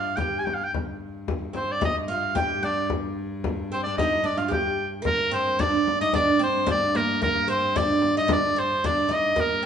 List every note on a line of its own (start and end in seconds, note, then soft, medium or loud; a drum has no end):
0.00 0.71 G2 medium
0.00 0.16 F4 medium
0.00 0.18 F5 medium
0.17 0.37 G4 medium
0.17 0.40 G5 medium
0.17 frame drum medium
0.39 0.46 G#5 medium
0.45 0.56 G5 medium
0.45 frame drum medium
0.55 0.66 F5 medium
0.64 0.72 G5 medium
0.72 5.06 G2 medium
0.72 frame drum medium
1.28 frame drum medium
1.53 1.81 C4 medium
1.53 1.73 C5 medium
1.53 frame drum medium
1.72 1.83 D5 medium
1.81 2.08 D#4 medium
1.81 1.96 D#5 medium
1.81 frame drum medium
2.08 2.35 F4 medium
2.08 2.34 F5 medium
2.35 2.62 G4 medium
2.35 2.66 G5 medium
2.35 frame drum medium
2.63 2.88 D4 medium
2.63 2.90 D5 medium
2.63 frame drum medium
2.90 frame drum medium
3.44 frame drum medium
3.72 3.85 C4 medium
3.72 3.78 C5 medium
3.83 3.99 D4 medium
3.83 3.96 D5 medium
3.97 4.23 D#4 medium
3.97 4.27 D#5 medium
3.97 frame drum medium
4.24 4.37 D4 medium
4.24 4.39 D5 medium
4.24 frame drum soft
4.37 4.48 F4 medium
4.37 4.52 F5 medium
4.48 4.88 G4 medium
4.48 frame drum medium
4.52 4.90 G5 medium
5.02 5.32 A#3 medium
5.02 frame drum medium
5.06 9.36 G2 medium
5.06 5.31 A#4 loud
5.31 5.59 C4 medium
5.31 5.62 C5 medium
5.31 frame drum soft
5.59 6.01 D4 loud
5.59 6.00 D5 loud
5.59 frame drum medium
5.88 frame drum medium
6.01 6.13 D#4 medium
6.01 6.13 D#5 loud
6.13 6.39 D4 loud
6.13 6.40 D5 loud
6.13 frame drum medium
6.39 6.66 C4 medium
6.39 6.67 C5 medium
6.39 frame drum soft
6.66 6.95 D4 loud
6.66 frame drum medium
6.71 6.98 D5 loud
6.95 7.20 A#3 medium
6.95 7.22 A#4 medium
6.95 frame drum medium
7.21 7.50 A#3 medium
7.21 7.47 A#4 loud
7.21 frame drum medium
7.48 7.75 C4 medium
7.48 7.78 C5 loud
7.48 frame drum soft
7.76 8.17 D4 medium
7.76 8.17 D5 loud
7.76 frame drum medium
8.02 frame drum medium
8.17 8.28 D#4 medium
8.17 8.29 D#5 loud
8.28 8.56 D4 medium
8.28 frame drum loud
8.32 8.60 D5 loud
8.56 8.84 C4 medium
8.56 8.87 C5 medium
8.56 frame drum soft
8.84 9.08 D4 medium
8.84 9.15 D5 medium
8.84 frame drum loud
9.09 9.37 D#4 medium
9.09 frame drum medium
9.14 9.41 D#5 medium
9.36 9.66 G2 medium
9.36 9.64 A#3 medium
9.36 9.65 A#4 loud
9.36 frame drum medium
9.63 9.66 C4 medium